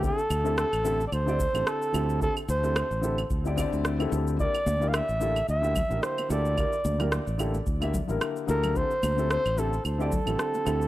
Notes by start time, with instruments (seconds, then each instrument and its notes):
0.02 grand piano D3 C4 E4 G4 A4, flugelhorn A4, kick, cabasa
0.19 cabasa
0.30 fretless electric bass D2, cabasa, claves
0.44 grand piano D3 C4 E4 G4 A4, cabasa
0.58 flugelhorn A4, cross-stick, cabasa
0.73 fretless electric bass A1, cabasa, claves
0.83 grand piano D3 C4 E4 G4 A4, cabasa
1.00 cabasa
1.07 flugelhorn D5
1.12 fretless electric bass D2, flugelhorn C5, cabasa, claves
1.26 grand piano D3 C4 E4 G4 D5, cabasa
1.40 kick, cabasa
1.53 fretless electric bass A1, grand piano D3 C4 E4 G4 A4, cabasa, claves
1.67 flugelhorn A4, cross-stick, cabasa
1.82 cabasa
1.92 fretless electric bass D2, grand piano D3 C4 E4 G4 A4, cabasa, claves
2.09 cabasa
2.20 grand piano D3 C4 E4 G4 A4, flugelhorn A4, kick, cabasa
2.37 cabasa, claves
2.49 fretless electric bass D2, flugelhorn C5, cabasa
2.62 grand piano D3 C4 E4 G4 A4, cross-stick, cabasa
2.76 cross-stick, cabasa, claves
2.91 fretless electric bass A1, cabasa
3.01 grand piano D3 C4 E4 G4 A4, cabasa
3.18 cabasa, claves
3.30 fretless electric bass D2, kick, cabasa
3.44 grand piano D3 C4 E4 G4 D5, cabasa
3.56 grand piano D3 C4 E4 G4 D5, kick, cabasa, claves
3.73 fretless electric bass D2, cabasa
3.85 cross-stick, cabasa
3.99 grand piano D3 C4 E4 G4 A4, cabasa, claves
4.11 fretless electric bass D2, grand piano D3 C4 E4 G4 A4, cabasa
4.27 cabasa
4.38 grand piano D3 A#3 E4 G4 A#4, flugelhorn D5, kick, cabasa
4.55 cabasa, claves
4.66 fretless electric bass D2, high conga, cabasa
4.80 grand piano D3 A#3 E4 G4 A#4, cabasa
4.88 flugelhorn F5
4.94 flugelhorn E5, cross-stick, cabasa, claves
5.09 fretless electric bass A1, cabasa
5.20 grand piano D3 A#3 E4 G4 A4, cabasa
5.36 cabasa, claves
5.48 fretless electric bass D2, flugelhorn E5, cabasa
5.62 grand piano D3 A#3 E4 G4 E5, cabasa
5.76 kick, low conga, cabasa, claves
5.89 fretless electric bass A1, grand piano D3 A#3 E4 G4 A#4, cabasa
6.03 flugelhorn C5, cross-stick, cabasa
6.18 muted conga, cabasa, claves
6.29 fretless electric bass D2, grand piano D3 A#3 E4 G4 A4, flugelhorn D5, cabasa
6.45 cabasa
6.56 grand piano D3 A#3 E4 G4 A#4, kick, cabasa, claves
6.73 cabasa
6.85 fretless electric bass D2, high conga, cabasa
6.98 grand piano D3 A#3 E4 G4 A#4, cross-stick, low conga, cabasa, claves
7.12 cross-stick, cabasa
7.27 fretless electric bass A1, cabasa
7.38 grand piano D3 A#3 E4 G4 A4, cabasa, claves
7.54 muted conga, cabasa
7.67 fretless electric bass D2, kick, cabasa
7.80 grand piano D3 A#3 E4 G4 E5, muted conga, cabasa, claves
7.94 kick, muted conga, low conga, cabasa
8.08 fretless electric bass A1, grand piano D3 A#3 E4 G4 A#4, cabasa
8.21 cross-stick, cabasa, claves
8.36 cabasa
8.47 fretless electric bass D2, grand piano D3 A#3 E4 G4 A4, flugelhorn A#4, high conga, cabasa
8.64 low conga, cabasa, claves
8.74 grand piano D3 C4 E4 G4 A4, flugelhorn C5, kick, cabasa
8.91 cabasa
9.03 fretless electric bass D2, high conga, cabasa, claves
9.17 grand piano D3 C4 E4 G4 A4, cabasa
9.31 flugelhorn C5, cross-stick, cabasa
9.46 fretless electric bass A1, cabasa, claves
9.56 grand piano D3 C4 E4 G4 A4, flugelhorn A4, cabasa
9.73 cabasa
9.85 fretless electric bass D2, flugelhorn A4, cabasa, claves
9.98 grand piano D3 C4 E4 G4 D5, cabasa
10.12 kick, low conga, cabasa
10.26 fretless electric bass A1, grand piano D3 C4 E4 G4 A4, cabasa, claves
10.39 cross-stick, cabasa
10.54 muted conga, cabasa
10.65 fretless electric bass D2, grand piano D3 C4 E4 G4 A4, cabasa, claves
10.82 cabasa